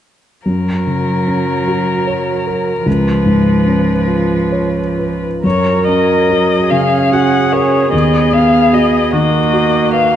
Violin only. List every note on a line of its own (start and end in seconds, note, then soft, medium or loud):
0.47 2.89 A#4 soft
2.87 5.23 B4 soft
5.46 5.84 C#5 soft
5.88 6.72 D#5 soft
6.71 7.14 F5 soft
7.13 7.54 F#5 soft
7.52 7.92 C#5 soft
7.92 8.35 D#5 soft
8.33 8.75 F5 soft
8.74 9.14 D#5 soft
9.14 9.92 D#5 soft
9.94 10.16 F5 soft